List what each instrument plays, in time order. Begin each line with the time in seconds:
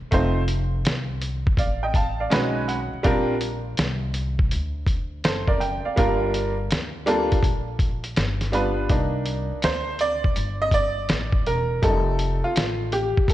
0.01 muted upright bass stroke
0.11 upright bass F1, upright piano A3 C4 D#4 F4 C5, kick, closed hi-hat
0.48 closed hi-hat
0.85 upright bass C2, snare, closed hi-hat
1.22 closed hi-hat
1.47 kick
1.57 upright bass A1, upright piano D5 F5, kick, closed hi-hat
1.83 upright piano D#5 G5
1.94 upright piano F5 A5, kick, closed hi-hat
2.20 upright piano D5 F5
2.30 upright bass B1, upright piano G#3 C#4 D#4 F#4 B4 G#5, snare, closed hi-hat
2.68 upright piano F#5, closed hi-hat
2.93 muted upright bass stroke
3.03 upright bass A#1, upright piano G3 C4 D4 F4 A#4, kick, closed hi-hat
3.41 closed hi-hat
3.77 upright bass C2, snare, closed hi-hat
4.14 closed hi-hat
4.39 kick
4.51 upright bass D2, closed hi-hat
4.87 kick, closed hi-hat
5.24 upright bass F#1, upright piano A4 C5, snare, closed hi-hat
5.48 upright piano A#4 D5, kick
5.60 upright piano G5, closed hi-hat
5.85 upright piano D5 F5, muted upright bass stroke
5.96 upright bass G1, upright piano G3 A#3 D4 F4 A#4, kick, closed hi-hat
6.34 closed hi-hat
6.71 upright bass D2, snare, closed hi-hat
7.06 upright piano G3 A#3 D4 F4 A4, closed hi-hat
7.32 kick, closed hi-hat
7.43 upright bass A#1, kick, closed hi-hat
7.79 kick, closed hi-hat
8.04 closed hi-hat
8.16 upright bass G1, snare, closed hi-hat
8.41 snare, closed hi-hat
8.52 upright piano G3 B3 D4 F4 B4, closed hi-hat
8.90 upright bass C2, upright piano A#3 D4 D#4, kick, closed hi-hat
9.26 closed hi-hat
9.52 muted upright bass stroke
9.62 upright bass D2, upright piano C5, snare, closed hi-hat
9.99 upright piano D5, closed hi-hat
10.24 muted upright bass stroke, kick
10.36 upright bass G1, closed hi-hat
10.62 upright piano D#5
10.71 upright piano D5, kick, closed hi-hat
11.09 upright bass A1, snare, closed hi-hat
11.32 kick
11.46 upright bass E1, upright piano A#4, closed hi-hat
11.82 upright bass F1, upright piano G3 A3 D#4 A4, kick, closed hi-hat
12.19 closed hi-hat
12.44 upright piano F4, muted upright bass stroke
12.56 upright bass A1, snare, closed hi-hat
12.92 upright piano G4, closed hi-hat
13.17 muted upright bass stroke, kick
13.28 upright bass C2, upright piano A4, kick, closed hi-hat